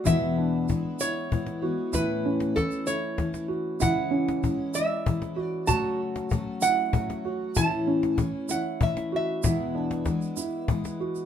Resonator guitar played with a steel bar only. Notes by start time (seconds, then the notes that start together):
0.06 E5
1.01 C#5
1.95 B4
2.56 A4
2.87 C#5
3.81 F#5
4.75 E5
5.43 D5
5.67 A5
6.62 F#5
7.57 A5
8.17 G#5
8.51 F#5
8.83 E5
9.16 E5